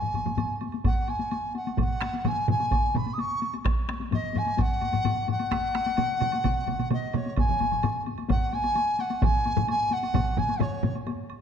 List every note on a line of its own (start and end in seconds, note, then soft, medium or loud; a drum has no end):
0.00 0.56 G#5 medium
0.00 taiko low-mid medium
0.14 taiko low-mid medium
0.14 taiko high soft
0.14 high woodblock soft
0.26 taiko low-mid medium
0.26 taiko high medium
0.26 high woodblock soft
0.37 taiko low-mid medium
0.37 taiko high medium
0.37 high woodblock soft
0.61 taiko high medium
0.61 high woodblock soft
0.72 taiko high soft
0.72 high woodblock soft
0.85 1.10 F#5 medium
0.85 taiko medium
0.85 taiko low-mid medium
0.85 taiko high medium
0.85 high woodblock soft
1.08 1.55 G#5 medium
1.08 taiko high soft
1.08 high woodblock soft
1.19 taiko high soft
1.19 high woodblock soft
1.31 taiko high medium
1.31 high woodblock soft
1.55 1.78 F#5 medium
1.55 taiko high medium
1.55 high woodblock soft
1.67 taiko high medium
1.67 high woodblock soft
1.77 2.29 F#5 medium
1.77 taiko medium
1.77 taiko low-mid medium
1.77 taiko mid medium
1.77 taiko high medium
1.77 high woodblock soft
2.01 taiko rim medium
2.01 taiko high medium
2.01 high woodblock soft
2.13 taiko high medium
2.13 high woodblock soft
2.25 2.50 G#5 medium
2.25 taiko low-mid loud
2.25 taiko mid medium
2.25 taiko high medium
2.25 high woodblock soft
2.48 2.98 G#5 medium
2.48 taiko low-mid medium
2.48 taiko mid loud
2.48 taiko high medium
2.48 high woodblock soft
2.60 taiko high medium
2.60 high woodblock soft
2.71 taiko medium
2.71 taiko high medium
2.71 high woodblock medium
2.94 3.15 B5 medium
2.94 taiko low-mid medium
2.94 taiko mid loud
2.94 taiko high medium
2.94 high woodblock soft
3.06 taiko high soft
3.06 high woodblock soft
3.13 3.21 D#6 medium
3.18 3.54 C#6 medium
3.18 taiko high medium
3.18 high woodblock soft
3.42 taiko high soft
3.42 high woodblock soft
3.54 taiko high soft
3.54 high woodblock soft
3.65 taiko rim medium
3.65 taiko loud
3.65 taiko high medium
3.65 high woodblock medium
3.88 taiko rim medium
3.88 taiko high soft
3.88 high woodblock soft
4.00 taiko high soft
4.00 high woodblock soft
4.11 4.39 D#5 medium
4.11 taiko low-mid medium
4.11 taiko high medium
4.11 high woodblock medium
4.34 4.62 G#5 medium
4.34 taiko low-mid medium
4.34 taiko high soft
4.34 high woodblock soft
4.46 taiko high medium
4.46 high woodblock soft
4.57 5.30 F#5 loud
4.57 taiko medium
4.57 taiko low-mid medium
4.57 taiko high medium
4.57 high woodblock medium
4.81 taiko low-mid medium
4.81 taiko high soft
4.81 high woodblock soft
4.93 taiko low-mid medium
4.93 taiko high soft
4.93 high woodblock soft
5.05 taiko low-mid loud
5.05 taiko high medium
5.05 high woodblock medium
5.28 6.88 F#5 loud
5.28 taiko low-mid medium
5.28 taiko high medium
5.28 high woodblock soft
5.39 taiko high soft
5.39 high woodblock soft
5.51 taiko rim medium
5.51 taiko medium
5.51 taiko high medium
5.51 high woodblock medium
5.74 taiko rim medium
5.74 taiko high medium
5.74 high woodblock soft
5.86 taiko high medium
5.86 high woodblock soft
5.97 taiko mid loud
5.97 taiko high medium
5.97 high woodblock medium
6.21 taiko mid loud
6.21 taiko high medium
6.21 high woodblock soft
6.32 taiko high medium
6.32 high woodblock soft
6.44 taiko medium
6.44 taiko mid medium
6.44 taiko high medium
6.44 high woodblock medium
6.67 taiko mid medium
6.67 taiko high medium
6.67 high woodblock soft
6.79 taiko mid medium
6.79 taiko high medium
6.79 high woodblock soft
6.90 7.17 D#5 medium
6.90 taiko mid loud
6.90 taiko high medium
6.90 high woodblock soft
7.13 7.37 C#5 medium
7.13 taiko mid loud
7.13 taiko high medium
7.13 high woodblock soft
7.25 taiko high medium
7.25 high woodblock soft
7.37 8.02 G#5 medium
7.37 taiko loud
7.37 taiko low-mid medium
7.37 taiko high medium
7.37 high woodblock medium
7.49 taiko low-mid medium
7.60 taiko low-mid medium
7.60 taiko high medium
7.60 high woodblock soft
7.72 taiko low-mid medium
7.72 high woodblock soft
7.83 taiko low-mid loud
7.83 taiko high medium
7.83 high woodblock medium
8.06 taiko high medium
8.06 high woodblock soft
8.18 taiko high medium
8.18 high woodblock soft
8.29 8.55 F#5 medium
8.29 taiko loud
8.29 taiko low-mid medium
8.29 taiko high medium
8.29 high woodblock medium
8.53 9.02 G#5 loud
8.53 taiko high soft
8.53 high woodblock soft
8.64 taiko high medium
8.64 high woodblock soft
8.75 taiko high medium
8.75 high woodblock medium
8.99 9.26 F#5 medium
8.99 taiko high medium
8.99 high woodblock soft
9.10 taiko high soft
9.10 high woodblock soft
9.22 9.69 G#5 loud
9.22 taiko loud
9.22 taiko low-mid medium
9.22 taiko mid medium
9.22 taiko high medium
9.22 high woodblock medium
9.45 taiko high medium
9.45 high woodblock soft
9.56 taiko low-mid loud
9.56 taiko mid medium
9.56 taiko high medium
9.56 high woodblock soft
9.68 9.94 G#5 loud
9.68 taiko high medium
9.68 high woodblock medium
9.91 10.40 F#5 loud
9.91 taiko high medium
9.91 high woodblock soft
10.03 taiko high medium
10.03 high woodblock soft
10.14 taiko loud
10.14 taiko low-mid medium
10.14 taiko mid loud
10.14 taiko high medium
10.14 high woodblock medium
10.37 10.63 G#5 medium
10.37 taiko low-mid medium
10.37 taiko mid loud
10.37 taiko high medium
10.37 high woodblock soft
10.49 taiko high soft
10.49 high woodblock soft
10.60 10.95 C#5 medium
10.60 taiko low-mid loud
10.60 taiko mid loud
10.60 taiko high medium
10.60 high woodblock soft
10.83 taiko low-mid medium
10.83 taiko mid loud
10.83 taiko high medium
10.83 high woodblock soft
10.95 taiko high soft
10.95 high woodblock soft
11.07 taiko high medium
11.07 high woodblock medium
11.30 high woodblock soft